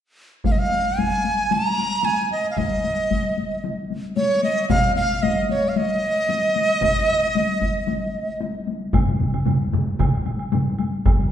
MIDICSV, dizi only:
0, 0, Header, 1, 2, 480
1, 0, Start_track
1, 0, Tempo, 530035
1, 412, Time_signature, 4, 2, 24, 8
1, 10249, End_track
2, 0, Start_track
2, 0, Title_t, "Dizi"
2, 0, Program_c, 0, 73
2, 413, Note_on_c, 0, 77, 58
2, 470, Note_on_c, 0, 75, 49
2, 483, Note_off_c, 0, 77, 0
2, 533, Note_on_c, 0, 77, 62
2, 547, Note_off_c, 0, 75, 0
2, 897, Note_on_c, 0, 80, 66
2, 910, Note_off_c, 0, 77, 0
2, 1382, Note_on_c, 0, 82, 74
2, 1396, Note_off_c, 0, 80, 0
2, 1854, Note_on_c, 0, 80, 66
2, 1868, Note_off_c, 0, 82, 0
2, 2095, Note_off_c, 0, 80, 0
2, 2103, Note_on_c, 0, 75, 59
2, 2264, Note_off_c, 0, 75, 0
2, 2270, Note_on_c, 0, 77, 44
2, 2334, Note_on_c, 0, 75, 65
2, 2348, Note_off_c, 0, 77, 0
2, 3296, Note_off_c, 0, 75, 0
2, 3770, Note_on_c, 0, 73, 64
2, 3997, Note_off_c, 0, 73, 0
2, 4017, Note_on_c, 0, 75, 68
2, 4240, Note_off_c, 0, 75, 0
2, 4252, Note_on_c, 0, 77, 75
2, 4478, Note_off_c, 0, 77, 0
2, 4491, Note_on_c, 0, 77, 76
2, 4733, Note_on_c, 0, 75, 70
2, 4747, Note_off_c, 0, 77, 0
2, 4975, Note_off_c, 0, 75, 0
2, 4982, Note_on_c, 0, 73, 66
2, 5150, Note_on_c, 0, 77, 49
2, 5163, Note_off_c, 0, 73, 0
2, 5227, Note_on_c, 0, 75, 79
2, 5241, Note_off_c, 0, 77, 0
2, 7622, Note_off_c, 0, 75, 0
2, 10249, End_track
0, 0, End_of_file